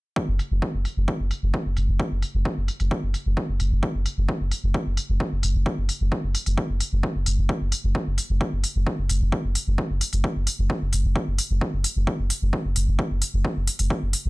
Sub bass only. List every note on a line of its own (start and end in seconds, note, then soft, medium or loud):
0.28 0.39 F#1 medium
0.51 0.62 F#1 medium
0.74 0.85 F#1 medium
0.97 1.08 F#1 medium
1.20 1.31 F#1 medium
1.42 1.53 F#1 medium
1.65 1.76 F#1 medium
1.77 1.88 F#1 medium
1.88 1.99 F#1 medium
2.11 2.22 F#1 medium
2.34 2.45 F#1 medium
2.57 2.68 F#1 medium
2.80 2.91 F#1 medium
3.03 3.14 F#1 medium
3.26 3.37 F#1 medium
3.49 3.59 F#1 medium
3.60 3.71 F#1 loud
3.71 3.83 F#1 medium
3.94 4.05 F#1 medium
4.17 4.28 F#1 medium
4.40 4.51 F#1 medium
4.63 4.74 F#1 medium
4.86 4.97 F#1 medium
5.09 5.20 F#1 medium
5.32 5.42 F#1 medium
5.43 5.54 F#1 loud
5.55 5.66 F#1 medium
5.78 5.89 F#1 medium
6.00 6.12 F#1 medium
6.23 6.34 F#1 medium
6.46 6.57 F#1 medium
6.69 6.80 F#1 medium
6.92 7.03 F#1 medium
7.15 7.26 F#1 medium
7.26 7.37 F#1 medium
7.38 7.49 F#1 medium
7.61 7.72 F#1 medium
7.84 7.95 F#1 medium
8.07 8.18 F#1 medium
8.29 8.40 F#1 medium
8.52 8.63 F#1 medium
8.75 8.86 F#1 medium
8.98 9.09 F#1 medium
9.09 9.20 F#1 loud
9.21 9.32 F#1 medium
9.44 9.55 F#1 medium
9.67 9.78 F#1 medium
9.90 10.01 F#1 medium
10.13 10.24 F#1 medium
10.36 10.47 F#1 medium
10.58 10.70 F#1 medium
10.81 10.92 F#1 medium
10.93 11.04 F#1 medium
11.04 11.15 F#1 medium
11.27 11.38 F#1 medium
11.50 11.61 F#1 medium
11.73 11.84 F#1 medium
11.96 12.07 F#1 medium
12.19 12.30 F#1 medium
12.42 12.53 F#1 medium
12.65 12.75 F#1 medium
12.76 12.87 F#1 medium
12.87 12.99 F#1 medium
13.10 13.21 F#1 medium
13.33 13.44 F#1 medium
13.56 13.67 F#1 medium
13.79 13.90 F#1 medium
14.02 14.13 F#1 medium
14.25 14.30 F#1 medium